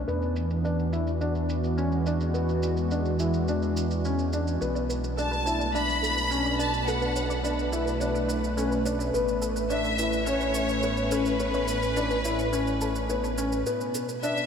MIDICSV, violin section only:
0, 0, Header, 1, 2, 480
1, 0, Start_track
1, 0, Tempo, 566038
1, 69, Time_signature, 4, 2, 24, 8
1, 12264, End_track
2, 0, Start_track
2, 0, Title_t, "Violin section"
2, 0, Program_c, 0, 48
2, 4402, Note_on_c, 0, 81, 83
2, 4842, Note_off_c, 0, 81, 0
2, 4878, Note_on_c, 0, 83, 99
2, 5592, Note_on_c, 0, 81, 81
2, 5593, Note_off_c, 0, 83, 0
2, 5814, Note_off_c, 0, 81, 0
2, 5832, Note_on_c, 0, 78, 74
2, 6310, Note_off_c, 0, 78, 0
2, 8233, Note_on_c, 0, 76, 94
2, 8677, Note_off_c, 0, 76, 0
2, 8714, Note_on_c, 0, 73, 93
2, 9429, Note_on_c, 0, 71, 90
2, 9431, Note_off_c, 0, 73, 0
2, 11108, Note_off_c, 0, 71, 0
2, 12066, Note_on_c, 0, 76, 92
2, 12264, Note_off_c, 0, 76, 0
2, 12264, End_track
0, 0, End_of_file